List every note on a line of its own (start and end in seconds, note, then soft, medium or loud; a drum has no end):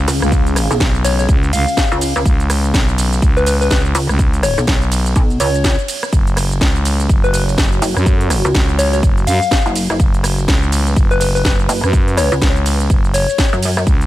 0.00 6.09 C#4 medium
0.00 6.09 G#4 medium
0.00 6.09 F5 loud
0.08 0.20 C#2 loud
0.08 open hi-hat loud
0.08 ride medium
0.08 shaker medium
0.22 0.68 C#2 loud
0.22 cross-stick medium
0.22 closed hi-hat soft
0.22 shaker soft
0.32 kick loud
0.32 closed hi-hat medium
0.32 shaker soft
0.47 closed hi-hat medium
0.47 shaker soft
0.56 cross-stick medium
0.56 open hi-hat loud
0.56 ride medium
0.56 shaker medium
0.71 0.79 B1 loud
0.71 closed hi-hat soft
0.71 shaker soft
0.80 1.27 B1 loud
0.80 kick loud
0.80 snare loud
0.80 closed hi-hat medium
0.80 shaker soft
0.95 closed hi-hat soft
0.95 shaker soft
1.04 1.14 C#5 medium
1.04 open hi-hat medium
1.04 ride medium
1.04 shaker medium
1.19 1.25 C#5 medium
1.19 closed hi-hat medium
1.19 shaker soft
1.29 1.51 C#2 loud
1.29 kick loud
1.29 closed hi-hat medium
1.29 shaker soft
1.43 closed hi-hat soft
1.43 shaker soft
1.53 1.65 C#2 medium
1.53 2.22 F5 loud
1.53 open hi-hat loud
1.53 ride medium
1.53 shaker medium
1.68 shaker soft
1.77 kick loud
1.77 snare loud
1.77 closed hi-hat medium
1.77 shaker soft
1.92 2.14 C#2 medium
1.92 closed hi-hat soft
1.92 shaker soft
2.01 open hi-hat medium
2.01 ride medium
2.01 shaker medium
2.16 2.24 C#2 loud
2.16 cross-stick medium
2.16 closed hi-hat soft
2.16 shaker soft
2.25 2.72 C#2 loud
2.25 kick loud
2.25 closed hi-hat medium
2.25 shaker soft
2.40 closed hi-hat medium
2.40 shaker soft
2.50 cross-stick medium
2.50 open hi-hat loud
2.50 ride medium
2.50 shaker medium
2.64 closed hi-hat soft
2.64 shaker soft
2.74 3.21 B1 loud
2.74 kick loud
2.74 snare loud
2.74 closed hi-hat medium
2.74 shaker soft
2.88 closed hi-hat soft
2.88 shaker soft
2.98 open hi-hat medium
2.98 ride medium
2.98 shaker medium
3.13 closed hi-hat medium
3.13 shaker soft
3.22 3.69 C#2 loud
3.22 kick loud
3.22 closed hi-hat medium
3.22 shaker soft
3.37 3.43 B4 medium
3.37 closed hi-hat soft
3.37 shaker soft
3.46 3.56 B4 medium
3.46 open hi-hat loud
3.46 ride medium
3.46 shaker medium
3.61 3.67 B4 medium
3.61 shaker soft
3.70 3.93 C#2 loud
3.70 3.80 B4 medium
3.70 kick loud
3.70 snare loud
3.70 closed hi-hat medium
3.70 shaker soft
3.85 closed hi-hat soft
3.85 shaker soft
3.95 4.07 C#2 medium
3.95 open hi-hat medium
3.95 ride medium
3.95 shaker medium
4.09 4.55 C#2 loud
4.09 cross-stick medium
4.09 closed hi-hat soft
4.09 shaker soft
4.19 kick loud
4.19 closed hi-hat medium
4.19 shaker soft
4.33 closed hi-hat medium
4.33 shaker soft
4.43 4.58 C#5 loud
4.43 cross-stick medium
4.43 open hi-hat loud
4.43 ride medium
4.43 shaker medium
4.58 4.66 B1 loud
4.58 closed hi-hat soft
4.58 shaker soft
4.67 5.14 B1 loud
4.67 kick loud
4.67 snare loud
4.67 closed hi-hat medium
4.67 shaker soft
4.82 closed hi-hat soft
4.82 shaker soft
4.92 open hi-hat medium
4.92 ride medium
4.92 shaker medium
5.06 closed hi-hat medium
5.06 shaker soft
5.16 5.38 B1 loud
5.16 kick loud
5.16 closed hi-hat medium
5.16 shaker soft
5.30 closed hi-hat soft
5.30 shaker soft
5.40 5.76 C#2 loud
5.40 6.09 C#5 loud
5.40 open hi-hat loud
5.40 ride medium
5.40 shaker medium
5.54 closed hi-hat soft
5.54 shaker soft
5.64 kick loud
5.64 snare loud
5.64 closed hi-hat medium
5.64 shaker soft
5.79 closed hi-hat soft
5.79 shaker soft
5.88 open hi-hat medium
5.88 ride medium
5.88 shaker medium
6.03 cross-stick medium
6.03 closed hi-hat soft
6.03 shaker soft
6.13 6.59 F#1 medium
6.13 13.83 F#4 medium
6.13 13.83 A4 medium
6.13 9.96 C#5 loud
6.13 kick loud
6.13 closed hi-hat medium
6.13 shaker soft
6.27 closed hi-hat medium
6.27 shaker soft
6.37 cross-stick medium
6.37 open hi-hat loud
6.37 ride medium
6.37 shaker medium
6.51 closed hi-hat soft
6.51 shaker soft
6.61 7.08 C#2 medium
6.61 kick loud
6.61 snare loud
6.61 closed hi-hat medium
6.61 shaker soft
6.76 closed hi-hat soft
6.76 shaker soft
6.85 open hi-hat medium
6.85 ride medium
6.85 shaker medium
7.00 closed hi-hat medium
7.00 shaker soft
7.09 7.56 F#1 loud
7.09 kick loud
7.09 closed hi-hat medium
7.09 shaker soft
7.24 7.30 B4 medium
7.24 closed hi-hat soft
7.24 shaker soft
7.34 7.43 B4 medium
7.34 open hi-hat loud
7.34 ride medium
7.34 shaker medium
7.49 shaker soft
7.58 7.80 F#1 loud
7.58 kick loud
7.58 snare loud
7.58 closed hi-hat medium
7.58 shaker soft
7.72 closed hi-hat soft
7.72 shaker soft
7.82 7.94 F#1 loud
7.82 open hi-hat medium
7.82 ride medium
7.82 shaker medium
7.97 8.43 F#2 loud
7.97 cross-stick medium
7.97 closed hi-hat soft
7.97 shaker soft
8.06 kick loud
8.06 closed hi-hat medium
8.06 shaker soft
8.21 closed hi-hat medium
8.21 shaker soft
8.30 cross-stick medium
8.30 open hi-hat loud
8.30 ride medium
8.30 shaker medium
8.45 8.53 C#2 medium
8.45 closed hi-hat soft
8.45 shaker soft
8.55 9.01 C#2 medium
8.55 kick loud
8.55 snare loud
8.55 closed hi-hat medium
8.55 shaker soft
8.69 closed hi-hat soft
8.69 shaker soft
8.79 8.88 C#5 medium
8.79 open hi-hat medium
8.79 ride medium
8.79 shaker medium
8.93 8.99 C#5 medium
8.93 closed hi-hat medium
8.93 shaker soft
9.03 9.26 F#1 loud
9.03 kick loud
9.03 closed hi-hat medium
9.03 shaker soft
9.17 closed hi-hat soft
9.17 shaker soft
9.27 9.39 F#2 loud
9.27 9.96 F5 loud
9.27 open hi-hat loud
9.27 ride medium
9.27 shaker medium
9.42 shaker soft
9.51 kick loud
9.51 snare loud
9.51 closed hi-hat medium
9.51 shaker soft
9.66 9.88 F#1 medium
9.66 closed hi-hat soft
9.66 shaker soft
9.75 open hi-hat loud
9.75 ride medium
9.75 shaker medium
9.90 9.98 F#1 loud
9.90 cross-stick medium
9.90 shaker soft
10.00 10.47 F#1 loud
10.00 13.83 B4 loud
10.00 kick loud
10.00 closed hi-hat medium
10.00 shaker soft
10.14 closed hi-hat medium
10.14 shaker soft
10.24 cross-stick medium
10.24 open hi-hat loud
10.24 ride medium
10.24 shaker medium
10.38 closed hi-hat soft
10.38 shaker soft
10.48 10.95 C#2 loud
10.48 kick loud
10.48 snare loud
10.48 closed hi-hat medium
10.48 shaker soft
10.63 closed hi-hat soft
10.63 shaker soft
10.72 open hi-hat medium
10.72 ride medium
10.72 shaker medium
10.87 closed hi-hat medium
10.87 shaker soft
10.96 11.43 F#1 loud
10.96 kick loud
10.96 closed hi-hat medium
10.96 shaker soft
11.11 11.17 B4 medium
11.11 closed hi-hat soft
11.11 shaker soft
11.21 11.30 B4 medium
11.21 open hi-hat loud
11.21 ride medium
11.21 shaker medium
11.35 11.41 B4 medium
11.35 shaker soft
11.45 11.68 F#1 loud
11.45 11.54 B4 medium
11.45 kick loud
11.45 snare loud
11.45 closed hi-hat medium
11.45 shaker soft
11.59 closed hi-hat soft
11.59 shaker soft
11.69 11.81 F#1 medium
11.69 open hi-hat loud
11.69 ride medium
11.69 shaker medium
11.83 12.30 F#2 loud
11.83 cross-stick medium
11.83 closed hi-hat soft
11.83 shaker soft
11.93 kick loud
11.93 closed hi-hat medium
11.93 shaker soft
12.08 closed hi-hat medium
12.08 shaker soft
12.17 12.32 C#5 loud
12.17 cross-stick medium
12.17 open hi-hat loud
12.17 ride medium
12.17 shaker medium
12.32 12.40 C#2 medium
12.32 closed hi-hat soft
12.32 shaker soft
12.42 12.88 C#2 loud
12.42 kick loud
12.42 snare loud
12.42 closed hi-hat medium
12.42 shaker soft
12.56 closed hi-hat soft
12.56 shaker soft
12.66 open hi-hat loud
12.66 ride medium
12.66 shaker medium
12.80 closed hi-hat medium
12.80 shaker soft
12.90 13.26 F#1 loud
12.90 kick loud
12.90 closed hi-hat medium
12.90 shaker soft
13.04 closed hi-hat soft
13.04 shaker soft
13.14 13.83 C#5 loud
13.14 open hi-hat loud
13.14 ride medium
13.14 shaker medium
13.29 shaker soft
13.38 kick loud
13.38 snare loud
13.38 closed hi-hat medium
13.38 shaker soft
13.53 13.85 F#2 medium
13.53 closed hi-hat soft
13.53 shaker soft
13.63 open hi-hat loud
13.63 ride medium
13.63 shaker medium
13.77 cross-stick medium
13.77 closed hi-hat soft
13.77 shaker soft
13.87 14.06 C#2 loud
13.87 kick loud
13.87 closed hi-hat medium
13.87 shaker soft
14.01 closed hi-hat soft
14.01 shaker soft